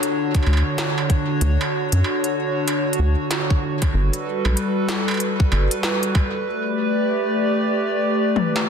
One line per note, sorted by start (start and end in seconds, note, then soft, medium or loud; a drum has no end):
0.00 3.90 D3 medium
0.00 3.90 D4 medium
0.00 6.43 F#4 medium
0.00 3.90 C#5 medium
0.00 closed hi-hat medium
0.35 kick loud
0.35 closed hi-hat soft
0.35 struck metal soft
0.36 struck metal soft
0.43 struck metal soft
0.47 0.63 D2 medium
0.47 struck metal soft
0.53 struck metal soft
0.57 struck metal soft
0.78 snare loud
0.78 closed hi-hat medium
0.98 struck metal soft
1.10 kick medium
1.10 closed hi-hat soft
1.41 1.57 D2 loud
1.41 closed hi-hat medium
1.61 struck metal medium
1.92 2.02 F#2 loud
1.92 closed hi-hat medium
2.04 struck metal soft
2.24 closed hi-hat medium
2.68 closed hi-hat medium
2.68 struck metal soft
2.93 closed hi-hat soft
2.99 3.15 D2 medium
3.31 snare loud
3.31 closed hi-hat medium
3.31 struck metal medium
3.50 kick medium
3.82 kick loud
3.82 closed hi-hat medium
3.82 struck metal soft
3.94 4.10 G1 loud
3.94 6.44 G3 medium
3.94 6.44 A4 medium
3.94 8.69 B4 medium
4.13 closed hi-hat soft
4.45 4.55 B1 loud
4.45 struck metal soft
4.57 closed hi-hat medium
4.89 snare loud
4.89 closed hi-hat soft
5.08 struck metal medium
5.11 struck metal medium
5.14 struck metal soft
5.17 closed hi-hat medium
5.17 struck metal soft
5.40 kick loud
5.52 5.68 G1 medium
5.52 struck metal medium
5.71 closed hi-hat medium
5.83 snare loud
6.03 closed hi-hat soft
6.15 kick medium
6.15 struck metal medium
6.47 8.69 A3 medium
6.47 8.69 G4 medium
6.47 8.69 D5 medium
8.36 high tom medium
8.56 snare medium